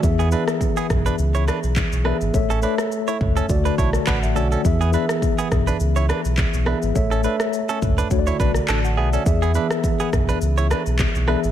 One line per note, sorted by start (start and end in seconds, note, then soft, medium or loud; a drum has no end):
0.02 0.35 E2 loud
0.02 0.24 E3 medium
0.02 0.24 B3 medium
0.02 0.25 G#4 medium
0.02 0.25 E5 medium
0.02 kick loud
0.02 shaker medium
0.19 0.29 B3 medium
0.19 0.28 G#4 medium
0.19 shaker soft
0.31 1.15 E3 medium
0.31 1.15 B3 medium
0.31 0.44 D4 medium
0.31 1.16 G#4 medium
0.31 0.43 B4 medium
0.31 1.16 E5 loud
0.31 shaker medium
0.48 cross-stick loud
0.48 shaker soft
0.61 kick medium
0.61 shaker medium
0.77 0.86 B3 medium
0.77 0.86 G#4 medium
0.77 shaker medium
0.90 1.10 B1 medium
0.90 kick loud
0.90 cross-stick medium
0.90 mid tom medium
0.90 shaker soft
1.06 1.15 D4 medium
1.06 1.15 B4 medium
1.06 shaker medium
1.18 1.50 C#2 loud
1.18 shaker medium
1.35 1.44 E4 medium
1.35 1.44 C#5 medium
1.35 shaker medium
1.48 1.59 D4 medium
1.48 1.59 B4 medium
1.48 cross-stick loud
1.48 shaker medium
1.63 1.84 B1 medium
1.63 shaker medium
1.76 kick loud
1.76 clap loud
1.76 shaker medium
1.92 2.12 B1 medium
1.92 shaker medium
2.04 2.26 E3 medium
2.04 2.26 B3 medium
2.04 2.17 D4 medium
2.04 2.27 G#4 medium
2.04 2.16 B4 medium
2.04 2.27 E5 medium
2.04 cross-stick medium
2.21 2.30 G#1 medium
2.21 shaker medium
2.33 2.66 A1 loud
2.33 2.55 A3 medium
2.33 2.55 A4 medium
2.33 2.56 C#5 medium
2.33 2.56 E5 loud
2.33 kick loud
2.33 shaker medium
2.50 2.60 C#4 medium
2.50 2.59 A4 medium
2.50 shaker soft
2.62 3.45 A3 medium
2.62 2.75 D4 medium
2.62 3.46 A4 medium
2.62 2.74 B4 medium
2.62 3.46 C#5 medium
2.62 3.47 E5 medium
2.62 shaker medium
2.78 cross-stick loud
2.78 shaker soft
2.92 shaker medium
3.08 3.17 E4 medium
3.08 3.17 C#5 medium
3.08 shaker medium
3.21 3.41 C#2 medium
3.21 kick medium
3.21 mid tom loud
3.37 3.46 C#4 medium
3.37 3.45 A4 medium
3.37 shaker medium
3.48 3.70 D2 loud
3.48 4.19 D3 medium
3.48 4.20 A3 medium
3.48 4.20 F#4 medium
3.48 4.20 D5 medium
3.48 kick loud
3.48 shaker medium
3.65 3.75 D4 medium
3.65 3.74 B4 medium
3.65 shaker medium
3.78 3.99 B1 medium
3.78 3.90 E4 medium
3.78 3.89 C#5 medium
3.78 4.05 A5 medium
3.78 kick medium
3.78 shaker soft
3.93 cross-stick medium
3.93 shaker medium
4.07 4.37 A1 loud
4.07 4.19 D4 medium
4.07 4.18 B4 medium
4.07 4.22 F#5 medium
4.07 kick medium
4.07 clap loud
4.07 shaker medium
4.23 4.35 E5 medium
4.23 shaker medium
4.35 4.56 B1 loud
4.35 4.57 D3 medium
4.35 4.57 A3 medium
4.35 4.47 C#4 medium
4.35 4.58 F#4 medium
4.35 4.47 A4 medium
4.35 4.58 D5 medium
4.35 shaker medium
4.52 4.61 C#4 medium
4.52 4.61 A4 medium
4.52 shaker medium
4.63 4.96 E2 loud
4.63 4.86 E3 medium
4.63 4.86 B3 medium
4.63 4.86 G#4 medium
4.63 4.87 E5 loud
4.63 kick loud
4.63 shaker medium
4.81 4.90 B3 medium
4.81 4.90 G#4 medium
4.81 shaker soft
4.92 5.76 E3 medium
4.92 5.77 B3 medium
4.92 5.05 D4 medium
4.92 5.77 G#4 medium
4.92 5.05 B4 medium
4.92 5.77 E5 medium
4.92 shaker medium
5.09 cross-stick loud
5.09 shaker soft
5.22 kick medium
5.22 shaker medium
5.38 5.48 B3 medium
5.38 5.47 G#4 medium
5.38 shaker medium
5.52 5.72 B1 medium
5.52 kick medium
5.52 cross-stick medium
5.52 mid tom loud
5.52 shaker soft
5.67 5.77 D4 medium
5.67 5.76 B4 medium
5.67 shaker medium
5.80 6.12 C#2 loud
5.80 shaker medium
5.96 6.06 E4 medium
5.96 6.05 C#5 medium
5.96 shaker medium
6.09 6.21 D4 medium
6.09 6.20 B4 medium
6.09 cross-stick loud
6.09 shaker soft
6.25 6.45 B1 medium
6.25 shaker medium
6.37 kick loud
6.37 clap loud
6.37 shaker medium
6.54 6.74 B1 medium
6.54 shaker soft
6.65 6.88 E3 medium
6.65 6.88 B3 medium
6.65 6.78 D4 medium
6.65 6.88 G#4 medium
6.65 6.78 B4 medium
6.65 6.89 E5 medium
6.65 cross-stick medium
6.82 6.92 G#1 medium
6.82 shaker medium
6.94 7.27 A1 loud
6.94 7.16 A3 medium
6.94 7.17 A4 medium
6.94 7.17 C#5 medium
6.94 7.18 E5 loud
6.94 kick loud
6.94 shaker medium
7.11 7.21 C#4 medium
7.11 7.20 A4 medium
7.11 shaker soft
7.23 8.07 A3 medium
7.23 7.36 D4 medium
7.23 8.07 A4 medium
7.23 7.35 B4 medium
7.23 8.08 C#5 medium
7.23 8.08 E5 loud
7.23 shaker medium
7.40 cross-stick loud
7.40 shaker soft
7.53 shaker medium
7.69 7.79 C#4 medium
7.69 7.78 A4 medium
7.69 shaker medium
7.82 8.03 C#2 medium
7.82 kick loud
7.82 mid tom loud
7.82 shaker soft
7.98 8.08 D4 medium
7.98 8.07 B4 medium
7.98 shaker medium
8.10 8.31 D2 loud
8.10 8.81 D3 medium
8.10 8.81 A3 medium
8.10 8.82 F#4 medium
8.10 8.19 C#5 medium
8.10 kick loud
8.10 shaker medium
8.19 8.72 D5 loud
8.27 8.36 E4 medium
8.27 8.36 C#5 medium
8.27 shaker soft
8.40 8.60 B1 medium
8.40 8.51 D4 medium
8.40 8.51 B4 medium
8.40 kick loud
8.40 shaker soft
8.54 cross-stick medium
8.54 shaker medium
8.68 8.99 A1 loud
8.68 8.80 D4 medium
8.68 8.80 A4 medium
8.68 8.84 A5 medium
8.68 clap loud
8.68 shaker medium
8.84 8.97 F#5 medium
8.84 shaker medium
8.97 9.18 B1 loud
8.97 9.09 B3 medium
8.97 9.08 G#4 medium
8.97 9.13 E5 medium
9.13 9.23 C#4 medium
9.13 9.22 A4 medium
9.13 9.41 D5 medium
9.13 shaker medium
9.25 9.58 E2 loud
9.25 9.47 E3 medium
9.25 9.48 B3 medium
9.25 9.48 G#4 medium
9.25 9.48 E5 loud
9.25 kick loud
9.25 shaker medium
9.42 9.52 B3 medium
9.42 9.51 G#4 medium
9.42 shaker soft
9.54 10.38 E3 medium
9.54 10.38 B3 medium
9.54 9.67 D4 medium
9.54 10.39 G#4 medium
9.54 9.66 B4 medium
9.54 10.39 E5 medium
9.54 shaker medium
9.71 cross-stick loud
9.71 shaker soft
9.84 kick medium
9.84 shaker medium
10.00 10.09 B3 medium
10.00 10.09 G#4 medium
10.00 shaker medium
10.13 10.33 B1 medium
10.13 kick medium
10.13 cross-stick medium
10.13 mid tom loud
10.13 shaker soft
10.29 10.38 D4 medium
10.29 10.38 B4 medium
10.29 shaker medium
10.41 10.73 C#2 loud
10.41 shaker medium
10.58 10.67 E4 medium
10.58 10.67 C#5 medium
10.58 shaker medium
10.71 10.82 D4 medium
10.71 10.82 B4 medium
10.71 cross-stick loud
10.71 shaker medium
10.86 11.07 B1 medium
10.86 shaker medium
10.99 kick loud
10.99 clap loud
10.99 shaker medium
11.15 11.36 B1 medium
11.15 shaker medium
11.27 11.49 E3 medium
11.27 11.49 B3 medium
11.27 11.40 D4 medium
11.27 11.50 G#4 medium
11.27 11.39 B4 medium
11.27 11.50 E5 medium
11.27 cross-stick loud
11.44 11.52 G#1 medium
11.44 shaker medium